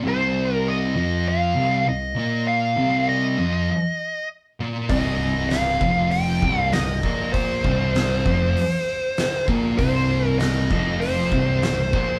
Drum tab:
HH |--------|--------|o-o-o-o-|o-o-o-o-|
SD |--------|--------|--o---o-|--o---o-|
BD |--------|--------|o--o-o-o|oo-o---o|

HH |o-o-o-o-|
SD |--o---o-|
BD |o--o-o-o|